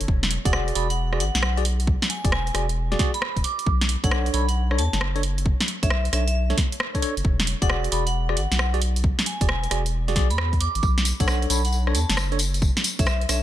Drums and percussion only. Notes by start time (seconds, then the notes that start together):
0.01 closed hi-hat
0.08 kick
0.23 snare, closed hi-hat
0.31 open hi-hat
0.45 kick, closed hi-hat
0.53 cross-stick
0.68 closed hi-hat
0.75 open hi-hat
0.90 closed hi-hat
1.13 cross-stick
1.20 open hi-hat
1.35 snare, closed hi-hat
1.43 cross-stick
1.57 closed hi-hat
1.65 open hi-hat
1.80 closed hi-hat
1.87 kick
2.02 snare, closed hi-hat
2.10 open hi-hat
2.25 kick, closed hi-hat
2.32 cross-stick
2.47 closed hi-hat
2.55 cross-stick, open hi-hat
2.69 closed hi-hat
2.92 snare, closed hi-hat
2.99 kick, snare, open hi-hat
3.14 closed hi-hat
3.22 cross-stick
3.37 kick, closed hi-hat
3.44 open hi-hat
3.59 closed hi-hat
3.67 kick
3.81 snare, closed hi-hat
3.89 open hi-hat
4.04 kick, closed hi-hat
4.11 cross-stick
4.26 closed hi-hat
4.34 open hi-hat
4.49 closed hi-hat
4.71 cross-stick
4.79 open hi-hat
4.93 snare, closed hi-hat
5.01 cross-stick
5.16 closed hi-hat
5.23 open hi-hat
5.38 closed hi-hat
5.46 kick
5.61 snare, closed hi-hat
5.68 open hi-hat
5.83 kick, closed hi-hat
5.90 cross-stick
6.05 closed hi-hat
6.13 cross-stick, open hi-hat
6.28 closed hi-hat
6.50 snare, closed hi-hat
6.58 kick, snare, open hi-hat
6.72 closed hi-hat
6.80 cross-stick
6.95 kick, closed hi-hat
7.02 open hi-hat
7.17 closed hi-hat
7.25 kick
7.40 snare, closed hi-hat
7.47 open hi-hat
7.62 kick, closed hi-hat
7.70 cross-stick
7.84 closed hi-hat
7.92 open hi-hat
8.07 closed hi-hat
8.29 cross-stick
8.37 open hi-hat
8.52 snare, closed hi-hat
8.59 cross-stick
8.74 closed hi-hat
8.82 open hi-hat
8.96 closed hi-hat
9.04 kick
9.19 snare, closed hi-hat
9.26 open hi-hat
9.41 kick, closed hi-hat
9.49 cross-stick
9.64 closed hi-hat
9.71 cross-stick, open hi-hat
9.86 closed hi-hat
10.08 snare, closed hi-hat
10.16 kick, snare, open hi-hat
10.31 closed hi-hat
10.38 cross-stick
10.53 kick, closed hi-hat
10.61 open hi-hat
10.75 closed hi-hat
10.83 kick, tambourine
10.98 snare, closed hi-hat
11.05 open hi-hat, tambourine
11.20 kick, closed hi-hat, tambourine
11.28 cross-stick, tambourine
11.42 closed hi-hat
11.50 open hi-hat, tambourine
11.65 closed hi-hat, tambourine
11.72 tambourine
11.87 cross-stick
11.95 open hi-hat, tambourine
12.10 snare, closed hi-hat, tambourine
12.17 cross-stick, tambourine
12.32 closed hi-hat
12.39 open hi-hat, tambourine
12.54 closed hi-hat, tambourine
12.62 kick, tambourine
12.77 snare, closed hi-hat
12.84 open hi-hat, tambourine
12.99 kick, closed hi-hat, tambourine
13.06 cross-stick, tambourine
13.21 closed hi-hat
13.29 cross-stick, open hi-hat, tambourine